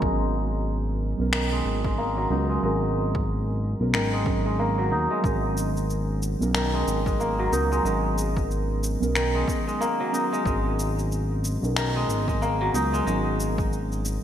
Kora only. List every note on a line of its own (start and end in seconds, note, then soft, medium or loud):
0.00 1.06 D#3 medium
0.00 1.38 F#3 medium
0.00 1.38 G#3 medium
0.00 1.30 A#3 medium
0.00 1.32 D#4 medium
1.33 3.67 D#3 medium
1.52 1.83 G#3 medium
1.85 2.48 G#3 medium
1.98 3.91 A#3 medium
2.17 3.99 F#3 medium
2.30 3.93 D#4 medium
2.49 2.62 G#3 medium
2.63 3.99 G#3 medium
3.94 6.28 D#3 medium
4.13 4.44 G#3 medium
4.46 5.09 G#3 medium
4.59 6.52 A#3 medium
4.78 6.60 F#3 medium
4.91 6.54 D#4 medium
5.11 5.23 G#3 medium
5.24 6.60 G#3 medium
6.54 8.88 D#3 medium
6.74 7.05 G#3 medium
7.07 7.71 G#3 medium
7.20 9.13 A#3 medium
7.39 9.20 F#3 medium
7.52 9.15 D#4 medium
7.72 7.84 G#3 medium
7.85 9.20 G#3 medium
9.15 11.49 D#3 medium
9.35 9.66 G#3 medium
9.67 10.31 G#3 medium
9.81 11.73 A#3 loud
10.00 11.81 F#3 medium
10.13 11.75 D#4 medium
10.32 10.44 G#3 medium
10.46 11.81 G#3 medium
11.76 14.10 D#3 medium
11.96 12.27 G#3 medium
12.28 12.92 G#3 medium
12.42 14.23 A#3 loud
12.61 14.23 F#3 loud
12.74 14.23 D#4 medium
12.93 13.05 G#3 medium
13.07 14.23 G#3 medium